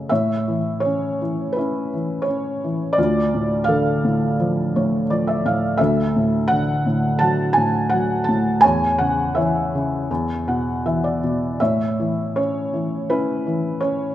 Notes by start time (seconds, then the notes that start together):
Already playing: C#3 C#4 F#4 A4 D#5
0.09 A2 C#5 E5
0.48 E3
0.80 C#5
0.85 C#4
1.22 E3
1.53 E4 B4
1.58 C#4
1.94 E3
2.22 C#5
2.28 C#4
2.64 E3
2.93 D5
2.98 D2 F4
3.34 A2
3.64 F5
3.68 D3 A4
4.05 A2
4.40 F3
4.76 A2 C#5
5.10 F3 D5
5.27 E5
5.45 A2 F5
5.77 D2 A4 E5
6.16 A2
6.48 D3 F#5
6.86 A2
7.19 F#3 F#5 A5
7.53 G#5
7.57 A2
7.89 F#3 F#5
8.24 A5
8.29 A2
8.61 C#5 G#5
8.65 E2
8.98 C#3 F#5
9.35 E3 C#5 E5
9.75 C#3
10.11 E2
10.48 B2 F#5
10.86 E3 E5
11.04 D5
11.24 B2
11.60 A2 C#5 E5
12.00 E3
12.36 C#4 C#5
12.74 E3
13.10 C#4 E4 B4
13.47 E3
13.81 C#4 C#5